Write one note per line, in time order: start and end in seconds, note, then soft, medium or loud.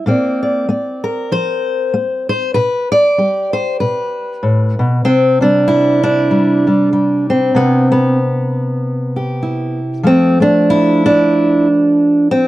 0.06 0.63 A#2 medium
0.06 0.67 A#3 medium
0.06 2.56 C4 soft
0.06 0.42 D5 soft
0.43 0.69 D5 medium
0.69 1.25 A#3 medium
0.69 1.32 D5 soft
1.04 1.93 A#4 medium
1.32 1.88 F3 medium
1.32 2.28 C5 loud
1.94 2.50 A#3 medium
2.29 2.54 C5 loud
2.54 3.13 B2 medium
2.54 2.91 B4 loud
2.92 3.53 D5 loud
3.18 3.75 G3 soft
3.18 5.02 G4 soft
3.53 3.80 C5 medium
3.80 4.38 B2 medium
3.80 5.05 B4 medium
4.43 4.79 A2 medium
4.79 5.05 B2 medium
5.05 7.52 C3 medium
5.05 5.41 C4 medium
5.41 6.30 G3 medium
5.41 6.02 D4 medium
5.68 6.66 E4 loud
6.03 7.28 D4 loud
6.31 6.66 G3 soft
6.67 6.91 G3 soft
6.93 7.55 G3 soft
7.30 8.18 C4 medium
7.55 10.01 C3 medium
7.55 7.90 B3 medium
7.92 9.78 B3 medium
9.16 10.01 G4 soft
9.43 10.06 E4 soft
10.03 12.48 F3 medium
10.03 10.40 A3 soft
10.03 10.41 C4 loud
10.40 12.48 A3 medium
10.40 11.03 D4 medium
10.70 11.67 E4 loud
11.06 12.29 D4 loud
12.31 12.48 C4 medium